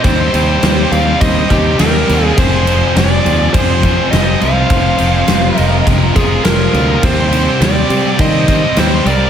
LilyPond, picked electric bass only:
\new Staff \with { instrumentName = "Picked electric bass" } { \clef bass \time 4/4 \key c \minor \tempo 4 = 103 ees,8 ees,8 ees,8 ees,8 ees,8 ees,8 ees,8 ees,8 | f,,4 f,,8 ees,8 f,4 f,,8 c,8 | f,,8 f,,8 f,,8 f,,8 f,,8 f,,8 f,,8 d,8 | ees,4 ees,8 c8 ees4 ees,8 c,8 | }